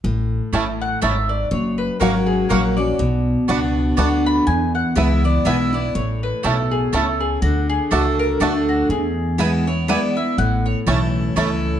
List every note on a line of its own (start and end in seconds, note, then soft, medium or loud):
0.04 0.39 A1 medium
0.04 0.52 A2 medium
0.53 0.95 A1 medium
0.53 1.00 A2 medium
0.53 0.63 A3 medium
0.53 0.66 A3 medium
0.53 0.66 C#4 medium
0.53 0.63 E4 medium
0.53 0.66 E4 medium
0.53 0.63 C#5 medium
0.53 0.64 A5 medium
0.81 1.02 F#5 medium
1.02 1.44 G#1 medium
1.02 1.49 G#2 medium
1.02 1.12 A3 medium
1.02 1.15 A3 medium
1.02 1.15 C#4 medium
1.02 1.12 E4 medium
1.02 1.16 E4 medium
1.02 1.12 C#5 medium
1.02 1.29 E5 medium
1.02 1.13 A5 medium
1.29 1.51 D5 medium
1.51 1.87 F#1 medium
1.51 2.46 F#2 medium
1.51 1.78 C#5 medium
1.78 1.99 B4 medium
2.00 2.43 G#1 medium
2.00 2.48 F#3 medium
2.00 2.11 A#3 medium
2.00 2.48 A#3 medium
2.00 2.14 A#3 medium
2.00 2.48 C#4 loud
2.00 2.14 C#4 medium
2.00 2.11 F#4 medium
2.00 2.49 F#4 loud
2.00 2.14 F#4 medium
2.00 2.27 A#4 medium
2.00 2.11 C#5 medium
2.00 2.11 F#5 loud
2.26 2.49 G#4 medium
2.49 2.92 A#1 medium
2.49 2.77 F#3 medium
2.49 2.60 A#3 medium
2.49 2.77 A#3 loud
2.49 2.63 A#3 medium
2.49 2.77 C#4 medium
2.49 2.63 C#4 medium
2.49 2.60 F#4 medium
2.49 2.76 F#4 medium
2.49 2.63 F#4 medium
2.49 2.76 A#4 medium
2.49 2.60 C#5 medium
2.49 2.61 F#5 loud
2.77 2.99 C#4 soft
2.77 2.98 F#4 medium
2.77 3.44 D5 medium
2.99 3.35 B1 medium
2.99 3.93 B2 medium
3.48 3.91 C#2 medium
3.48 3.58 B3 medium
3.48 3.96 B3 medium
3.48 3.61 B3 medium
3.48 3.96 D4 medium
3.48 3.62 D4 medium
3.48 3.59 F#4 medium
3.48 3.96 F#4 loud
3.48 3.62 F#4 medium
3.48 3.59 D5 medium
3.48 3.59 F#5 medium
3.97 4.40 D2 medium
3.97 4.45 D3 medium
3.97 4.07 B3 medium
3.97 4.45 B3 medium
3.97 4.11 B3 medium
3.97 4.45 D4 medium
3.97 4.11 D4 medium
3.97 4.08 F#4 medium
3.97 4.45 F#4 medium
3.97 4.11 F#4 medium
3.97 4.08 D5 loud
3.97 4.08 F#5 loud
3.97 4.25 F#5 medium
4.26 4.46 B5 loud
4.47 5.41 E2 medium
4.47 4.82 E2 medium
4.47 4.74 G#5 medium
4.75 4.96 F#5 medium
4.95 5.38 C#2 medium
4.95 5.22 E3 medium
4.95 5.23 G#3 medium
4.95 5.06 B3 medium
4.95 5.23 B3 medium
4.95 5.09 B3 medium
4.95 5.06 E4 medium
4.95 5.23 E4 medium
4.95 5.00 E4 medium
4.95 5.06 B4 medium
4.95 5.23 E5 medium
4.95 5.07 G#5 medium
5.24 5.45 B3 medium
5.24 5.45 E4 medium
5.24 5.45 D5 loud
5.45 5.87 B1 medium
5.45 5.72 E3 medium
5.45 5.72 G#3 medium
5.45 5.56 B3 medium
5.45 5.72 B3 loud
5.45 5.58 B3 medium
5.45 5.56 E4 medium
5.45 5.71 E4 loud
5.45 5.49 E4 medium
5.45 5.56 B4 loud
5.45 5.73 E5 loud
5.45 5.56 G#5 medium
5.73 5.95 B3 soft
5.73 5.94 E4 medium
5.73 5.95 D5 medium
5.95 6.30 A1 medium
5.95 6.89 A2 medium
5.95 6.22 C#5 medium
6.23 6.44 B4 medium
6.43 6.86 B1 medium
6.43 6.91 B2 medium
6.43 6.54 A3 medium
6.43 6.57 A3 medium
6.43 6.57 C#4 medium
6.43 6.54 E4 medium
6.43 6.57 E4 medium
6.43 6.71 A4 medium
6.43 6.54 C#5 medium
6.43 6.54 A5 medium
6.71 6.93 G#4 medium
6.93 7.35 C#2 medium
6.93 7.40 C#3 medium
6.93 7.03 A3 medium
6.93 7.06 A3 medium
6.93 7.06 C#4 medium
6.93 7.03 E4 medium
6.93 7.06 E4 medium
6.93 7.20 A4 medium
6.93 7.03 C#5 medium
6.93 7.04 A5 loud
7.20 7.42 G#4 medium
7.42 7.77 D2 medium
7.42 8.36 D3 medium
7.42 7.69 F#4 medium
7.69 7.91 G#4 medium
7.91 8.34 C#2 medium
7.91 8.01 A3 medium
7.91 8.39 A3 medium
7.91 8.04 A3 medium
7.91 8.39 D4 medium
7.91 8.04 D4 medium
7.91 8.02 F#4 medium
7.91 8.39 F#4 loud
7.91 8.05 F#4 medium
7.91 8.18 A4 medium
7.91 8.02 D5 medium
7.91 8.02 A5 medium
8.19 8.40 A#4 loud
8.40 8.82 D2 medium
8.40 8.88 D3 medium
8.40 8.51 A3 medium
8.40 8.88 A3 medium
8.40 8.54 A3 medium
8.40 8.88 D4 medium
8.40 8.54 D4 medium
8.40 8.51 F#4 loud
8.40 8.89 F#4 loud
8.40 8.54 F#4 medium
8.40 8.68 A4 medium
8.40 8.51 D5 medium
8.40 8.51 A5 medium
8.69 8.90 F#4 medium
8.89 9.95 E2 medium
8.89 9.84 E2 medium
8.89 9.63 G#4 medium
9.38 9.65 E3 medium
9.38 9.66 G#3 loud
9.38 9.49 B3 medium
9.38 9.66 B3 medium
9.38 9.52 B3 medium
9.38 9.49 E4 medium
9.38 9.66 E4 loud
9.38 9.42 E4 medium
9.38 9.50 B4 medium
9.38 9.50 G#5 medium
9.67 9.88 B3 soft
9.67 9.88 E4 medium
9.67 9.88 C#5 medium
9.88 10.15 E3 medium
9.88 10.15 G#3 medium
9.88 9.99 B3 medium
9.88 10.15 B3 loud
9.88 10.01 B3 medium
9.88 9.99 E4 medium
9.88 10.16 E4 loud
9.88 9.92 E4 medium
9.88 9.99 B4 loud
9.88 10.16 D5 medium
9.88 9.99 G#5 loud
10.17 10.38 B3 soft
10.17 10.37 E4 medium
10.17 10.38 E5 medium
10.38 10.73 A1 medium
10.38 11.32 A2 medium
10.38 10.65 F#5 loud
10.66 10.79 C#5 loud
10.87 11.29 B1 medium
10.87 11.34 E3 medium
10.87 10.97 A3 medium
10.87 11.34 A3 medium
10.87 11.00 A3 medium
10.87 11.35 C#4 medium
10.87 11.00 C#4 medium
10.87 10.97 E4 medium
10.87 11.35 E4 medium
10.87 11.00 E4 medium
10.87 10.97 C#5 medium
10.87 10.98 A5 medium
11.36 11.78 C#2 medium
11.36 11.80 E3 medium
11.36 11.46 A3 medium
11.36 11.80 A3 medium
11.36 11.49 A3 medium
11.36 11.80 C#4 loud
11.36 11.49 C#4 medium
11.36 11.47 E4 medium
11.36 11.80 E4 medium
11.36 11.49 E4 medium
11.36 11.47 C#5 loud
11.36 11.47 A5 medium